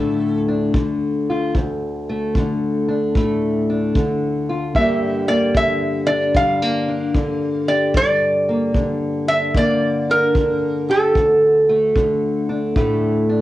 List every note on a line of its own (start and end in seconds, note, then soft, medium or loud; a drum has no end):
0.00 1.54 D2 medium
0.00 0.75 A2 medium
0.00 0.74 D3 medium
0.00 1.52 A3 medium
0.00 0.48 D4 medium
0.00 1.29 F4 medium
0.00 0.41 A4 medium
0.49 2.88 D4 medium
0.74 2.36 D3 medium
0.74 kick medium
1.30 1.53 F4 medium
1.55 4.75 D2 medium
1.55 kick medium
2.09 3.16 A3 medium
2.35 3.96 D3 medium
2.35 kick medium
2.88 3.69 D4 medium
3.15 3.96 A2 medium
3.15 4.73 A3 medium
3.15 kick medium
3.70 4.78 D4 medium
3.95 4.76 D3 medium
3.95 kick medium
4.49 4.73 F4 medium
4.75 7.92 G2 medium
4.75 5.55 D3 medium
4.75 5.28 A#3 medium
4.75 6.08 D4 medium
4.75 7.67 G4 medium
4.75 5.29 E5 loud
4.75 kick medium
5.28 6.36 A#3 medium
5.28 5.57 D5 medium
5.55 6.35 D3 medium
5.55 6.10 E5 loud
5.55 kick medium
6.07 6.88 D4 medium
6.07 6.36 D5 loud
6.35 7.14 D3 medium
6.35 6.62 G3 medium
6.35 7.72 F5 loud
6.35 kick medium
6.62 7.96 A#3 medium
6.88 9.28 D4 medium
7.14 8.74 D3 medium
7.14 kick medium
7.68 7.92 G4 medium
7.68 7.96 D5 medium
7.94 11.13 G2 medium
7.94 9.24 D5 loud
7.94 kick medium
8.49 9.55 A#3 medium
8.74 9.55 D3 medium
8.74 kick medium
9.28 10.09 D4 medium
9.28 9.57 E5 loud
9.55 10.35 D3 medium
9.55 11.13 A#3 medium
9.55 10.10 D5 loud
9.55 kick medium
10.09 12.49 D4 medium
10.09 10.90 A#4 medium
10.35 11.96 D3 medium
10.35 kick medium
10.89 11.13 G4 medium
10.89 13.26 A4 medium
11.15 13.41 D2 medium
11.15 kick medium
11.69 12.77 A3 medium
11.96 13.41 D3 medium
11.96 kick medium
12.49 13.28 D4 medium
12.76 13.41 A2 medium
12.76 13.41 A3 medium
12.76 kick medium
13.29 13.41 D4 medium